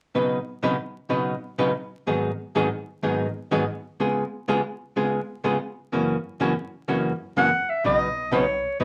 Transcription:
0.15 hollow-body jazz guitar B2 C#3 F#3 B3 D#4 B4
0.63 hollow-body jazz guitar B2 C#3 F#3 B3 D#4 B4
1.09 hollow-body jazz guitar B2 C#3 F#3 B3 D#4 B4
1.58 hollow-body jazz guitar B2 C#3 F#3 B3 D#4 B4
2.07 hollow-body jazz guitar G#2 D#3 F#3 B3 D#4 G#4
2.55 hollow-body jazz guitar G#2 D#3 F#3 B3 D#4 G#4
3.03 hollow-body jazz guitar G#2 D#3 F#3 B3 D#4 G#4
3.51 hollow-body jazz guitar G#2 D#3 F#3 B3 D#4 G#4
4.00 hollow-body jazz guitar C#3 G#3 B3 F4 G#4
4.48 hollow-body jazz guitar C#3 G#3 B3 F4 G#4
4.96 hollow-body jazz guitar C#3 G#3 B3 F4 G#4
5.44 hollow-body jazz guitar C#3 G#3 B3 F4 G#4
5.92 hollow-body jazz guitar F#2 C#3 E3 A#3 C#4 F#4
6.40 hollow-body jazz guitar F#2 C#3 E3 A#3 C#4 F#4
6.88 hollow-body jazz guitar F#2 C#3 E3 A#3 C#4 F#4
7.37 hollow-body jazz guitar F#2 C#3 E3 A#3 C#4 F#4, clarinet F#5
7.69 clarinet E5
7.84 upright bass B1, hollow-body jazz guitar B2 C#3 F#3 B3 D#4 B4, clarinet D#5
8.31 hollow-body jazz guitar B2 C#3 F#3 B3 D#4 B4, clarinet C#5
8.80 upright bass F#1, hollow-body jazz guitar B2 C#3 F#3 B3 D#4 B4, clarinet D#5

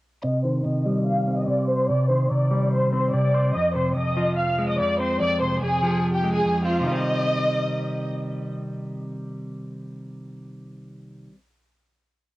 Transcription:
0.24 clean electric guitar C3, violin section D#5 D#6
0.44 clean electric guitar D#3, violin section C5 C6
0.65 clean electric guitar C3, violin section D#5 D#6
0.86 clean electric guitar G3
1.06 violin section F5 F6
1.27 clean electric guitar C4
1.37 violin section D#5 D#6
1.47 clean electric guitar C3, violin section D5 D6
1.68 clean electric guitar C5, violin section C5 C6
1.89 clean electric guitar C3, violin section D5 D6
2.10 clean electric guitar D#3, violin section C5 C6
2.31 clean electric guitar C3, violin section D5 D6
2.51 clean electric guitar G3
2.72 violin section C5 C6
2.93 clean electric guitar C4, violin section C5 C6
3.14 clean electric guitar C3, violin section D5 D6
3.34 clean electric guitar C5
3.55 clean electric guitar F2, violin section D#5 D#6
3.75 clean electric guitar C3, violin section C5 C6
3.96 clean electric guitar F2, violin section D#5 D#6
4.17 clean electric guitar F3
4.38 violin section F5 F6
4.58 clean electric guitar G#3
4.69 violin section D#5 D#6
4.79 clean electric guitar F2, violin section D5 D6
5.00 clean electric guitar C4, violin section C5 C6
5.20 clean electric guitar F2, violin section D5 D6
5.41 clean electric guitar C3, violin section C5 C6
5.62 clean electric guitar F2, violin section G#4 G#5
5.82 clean electric guitar F3
6.13 violin section G4 G5
6.24 clean electric guitar G#3
6.34 violin section G#4 G#5
6.45 clean electric guitar F2
6.65 clean electric guitar C4, violin section F4 F5
6.80 clean electric guitar C3 D#3
6.86 clean electric guitar G3, violin section D#5
6.92 clean electric guitar C4

